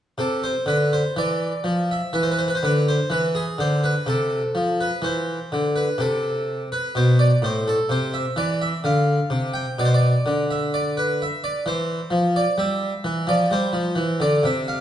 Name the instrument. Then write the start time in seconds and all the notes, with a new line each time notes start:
harpsichord
0.18 C3 A4
0.44 C5
0.66 D3 B4
0.93 C5
1.16 E3 D5
1.64 F3
1.91 E5
2.13 E3 B4
2.23 C5
2.31 B4
2.38 C5
2.48 B4
2.55 C5
2.63 D3 B4
2.88 C5
3.10 E3 B4
3.35 G#4
3.58 D3 C5
3.84 B4
4.06 C3 A4
4.55 F3
4.81 B4
5.02 E3 C5
5.52 D3
5.76 B4
5.98 C3 A4
6.72 B4
6.95 B2 C5
7.19 D5
7.42 A2 C5
7.68 A4
7.89 C3 C5
8.14 E5
8.36 E3 D5
8.62 E5
8.84 D3 F5
9.30 C3
9.54 G5
9.79 B2 D5
9.85 C5
9.94 D5
10.26 D3
10.51 E5
10.74 D5
10.97 B4
11.22 E5
11.44 D5
11.66 E3 C5
12.11 F3
12.36 D5
12.58 G3 E5
13.04 E3
13.27 F3 D5
13.51 G3 C5
13.73 F3
13.96 E3
14.20 D3 D5
14.43 C3 E5
14.68 F5